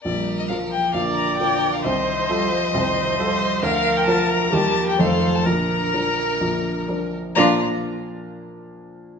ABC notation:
X:1
M:4/4
L:1/16
Q:1/4=132
K:Bb
V:1 name="Violin"
d3 e f2 g2 f2 b2 g3 f | e16 | f3 g a2 b2 a3 g f3 a | b12 z4 |
b2 z12 z2 |]
V:2 name="Viola"
z8 d8 | c8 c8 | B8 G4 A4 | B12- B2 z2 |
D2 z12 z2 |]
V:3 name="Violin"
B8 B4 B4 | c12 c4 | B4 B8 c4 | B12- B2 z2 |
F2 z12 z2 |]
V:4 name="Cello" clef=bass
G,4 F,4 D,4 D,4 | E,4 G,2 F,2 E,4 G,4 | F,8 F,4 E,4 | D,12- D,2 z2 |
F,2 z12 z2 |]
V:5 name="Grand piano" clef=bass
[B,,,B,,]4 [F,FB]4 [B,,,B,,]4 [F,FB]4 | [C,,C,]4 [F,FA]4 [C,,C,]4 [F,FA]4 | [D,,D,]4 [F,FB]4 [E,,E,G,EB]4 [F,,,F,,F,EA]4 | [B,,,B,,]4 [F,DB]4 [B,,,B,,]4 [F,DB]4 |
[B,,F,B,DBd]2 z12 z2 |]